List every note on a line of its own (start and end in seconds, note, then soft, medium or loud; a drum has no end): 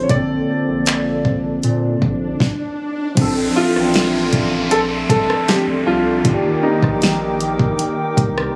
0.00 0.11 E3 soft
0.00 0.12 F3 soft
0.00 0.12 C4 soft
0.00 0.10 D4 soft
0.00 2.36 F4 medium
0.00 0.11 A4 medium
0.00 2.36 C5 medium
0.00 0.10 C#5 medium
0.07 0.43 A#1 medium
0.07 0.15 C3 medium
0.07 2.36 A#3 medium
0.07 2.38 A#3 medium
0.07 2.38 A4 medium
0.07 2.38 D5 medium
0.07 2.37 D5 loud
0.07 kick loud
0.07 closed hi-hat medium
0.07 swell medium
0.12 2.39 D3 medium
0.12 2.37 C4 medium
0.12 2.38 A4 medium
0.68 1.60 A#1 medium
0.86 clap loud
0.86 closed hi-hat medium
1.25 kick medium
1.63 1.97 A#2 loud
1.63 closed hi-hat medium
2.02 2.35 A#1 medium
2.02 kick medium
2.40 kick loud
2.40 snare medium
3.15 3.50 A#1 medium
3.15 5.43 F3 medium
3.15 5.44 C4 medium
3.15 6.22 A4 medium
3.15 6.22 D5 medium
3.15 6.22 E5 medium
3.15 6.22 C6 medium
3.15 kick loud
3.15 closed hi-hat medium
3.15 downlifter medium
3.19 5.45 D4 medium
3.19 5.46 A4 medium
3.56 4.75 F4 loud
3.56 6.17 E5 medium
3.75 4.67 A1 loud
3.75 cross-stick medium
3.80 6.38 G5 medium
3.94 snare loud
3.94 closed hi-hat medium
4.33 kick loud
4.33 closed hi-hat medium
4.71 5.04 A#1 loud
4.71 4.80 A4 loud
4.71 closed hi-hat medium
5.09 5.26 C2 medium
5.09 5.45 A4 loud
5.09 kick loud
5.09 closed hi-hat medium
5.30 cross-stick loud
5.48 6.25 F3 soft
5.48 6.25 C4 soft
5.48 6.26 D4 soft
5.48 5.57 G4 loud
5.48 6.26 A4 medium
5.48 snare loud
5.48 closed hi-hat medium
5.68 5.84 D2 medium
5.86 6.20 C2 medium
5.86 6.66 F4 loud
5.86 6.59 A5 medium
6.23 6.58 D#2 loud
6.23 8.56 D#3 medium
6.23 8.56 A#3 medium
6.23 8.56 D#4 medium
6.23 8.56 A#4 medium
6.23 8.56 G5 medium
6.23 8.56 D6 medium
6.23 kick loud
6.23 closed hi-hat medium
6.27 8.56 G4 medium
6.27 8.56 D5 medium
6.63 8.56 D#4 medium
6.83 7.75 A#1 loud
6.83 kick medium
6.83 cross-stick medium
7.02 snare loud
7.02 closed hi-hat medium
7.41 closed hi-hat medium
7.59 kick loud
7.79 closed hi-hat medium
8.17 8.50 C2 medium
8.17 kick medium
8.17 closed hi-hat medium
8.38 cross-stick loud